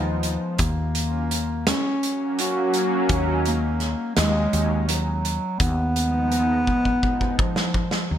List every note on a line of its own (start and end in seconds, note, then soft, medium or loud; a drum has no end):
0.00 0.36 D#2 medium
0.00 0.61 F3 medium
0.23 closed hi-hat medium
0.58 1.72 D#2 medium
0.58 1.66 A#3 medium
0.58 kick loud
0.58 closed hi-hat medium
0.95 closed hi-hat medium
1.31 closed hi-hat medium
1.67 2.42 C#4 loud
1.67 snare loud
1.67 closed hi-hat medium
2.02 3.02 F#3 medium
2.02 3.03 A#3 medium
2.02 3.02 C#4 medium
2.02 3.03 F#4 medium
2.02 closed hi-hat medium
2.39 2.93 F#4 medium
2.39 closed hi-hat medium
2.74 closed hi-hat medium
3.09 3.94 D#2 medium
3.09 kick medium
3.09 closed hi-hat medium
3.46 4.14 A#3 medium
3.46 closed hi-hat medium
3.80 snare soft
3.80 closed hi-hat soft
4.16 4.45 D#2 loud
4.16 4.84 G#3 loud
4.16 snare loud
4.16 closed hi-hat medium
4.53 5.37 D#2 medium
4.53 closed hi-hat medium
4.88 5.60 F#3 medium
4.88 closed hi-hat medium
5.25 closed hi-hat medium
5.59 6.73 D#2 medium
5.59 7.39 B3 loud
5.59 kick loud
5.59 closed hi-hat medium
5.96 closed hi-hat medium
6.32 closed hi-hat medium
6.67 kick medium
6.85 kick medium
7.03 kick medium
7.21 kick medium
7.39 8.13 F3 medium
7.39 kick loud
7.56 snare medium
7.74 kick medium
7.91 snare medium
8.11 8.18 D#2 medium
8.11 8.18 F#3 medium